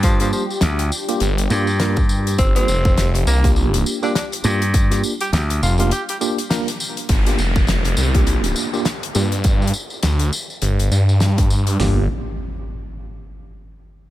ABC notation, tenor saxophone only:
X:1
M:4/4
L:1/16
Q:"Swing 16ths" 1/4=102
K:Gm
V:1 name="Tenor saxophone"
F, F, F, z12 z | C C4 z B, z4 D D z3 | z3 G G z F F G G z6 | z16 |
z16 | z16 |]